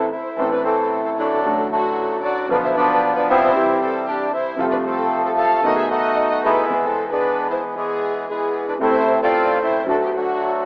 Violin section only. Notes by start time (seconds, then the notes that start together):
0.12 C5
0.38 A4
0.52 B4
0.66 A4
1.06 A4
1.18 A4
1.72 F#4
2.23 D5
2.50 B4
2.63 C5
2.75 B4
3.15 B4
3.29 C5
3.80 A4
4.06 G4
4.32 C5
4.58 A4
4.71 B4
4.85 A4
5.25 A4
5.37 F5
5.65 D#5
5.78 E5
5.90 D#5
6.29 D#5
6.43 B4
6.84 A4
7.12 B4
7.51 C5
7.76 G#4
8.29 G#4
8.69 B4
8.84 C5
9.23 D5
9.63 C5
9.89 A4
10.04 G4
10.15 F#4